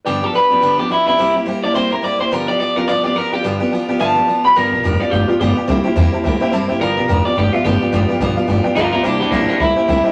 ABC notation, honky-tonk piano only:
X:1
M:4/4
L:1/8
Q:"Swing" 1/4=214
K:Gmix
V:1 name="Honky-tonk piano"
[Bdg] [Bdg] [Bdg] [Bdg] [Bdg] [Bdg] [Bdg] [Bdg] | [ceg] [ceg] [ceg] [ca] [ceg] [ceg] [ceg] [ceg] | [Bdg] [Bdg] [Bdg] [Bdg] [Bdf] [Bdg] [Bdg] [Bdg] | [Bdg] [Bdg] [Bdg] [Bdg] [Bde] [Bdg] [Bdg] [Bdg] |
[Bdg] [Bda] [Bdg] [Bdg] [Bdf] [Bdg] [Bdg] [Bdg] | [ceg] [ceg] [ceg] [cea] [ceg] [ceg] [cea] [ceg] | [Bdg] [Bdg] [Bdg] [Bdg] [Bdg] [Bde] [Bdg] [Bdg] | [Bdg] [Bdg] [Bdg] [Bdf] [Bdg] [Bdg] [Bdg] [Bde] |
[ceg] [ceg] [ceg] [ceg] [ce_b] [ceg] [ceg] [ceg] |]